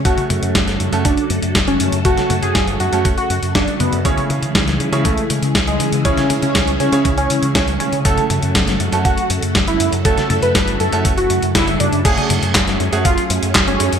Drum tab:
CC |----------------|----------------|----------------|----------------|
HH |xxxxxxxxxxxxxxxx|xxxxxxxxxxxxxxxx|xxxxxxxxxxxxxxxx|xxxxxxxxxxxxxxxx|
CP |----------------|----------------|----------------|----------------|
SD |----oo------o---|-o--o-------o---|----oo------o---|-o--o-------o---|
T1 |-oo-------------|-oo-----------o-|-oo-------------|-oo-----------o-|
BD |o---o---o---o---|o---o---o---o---|o---o---o---o---|o---o---o---o---|

CC |----------------|----------------|x---------------|
HH |xxxxxxxxxxxxxxxx|xxxxxxxxxxxxxxxx|xxxxxxxxxxxxxxxx|
CP |----------------|----------------|----x-------x---|
SD |----oo------o---|-o--o-------o---|----oo------o---|
T1 |-oo-------------|-oo-----------o-|-oo-------------|
BD |o---o---o---o---|o---o---o---o---|o---o---o---o---|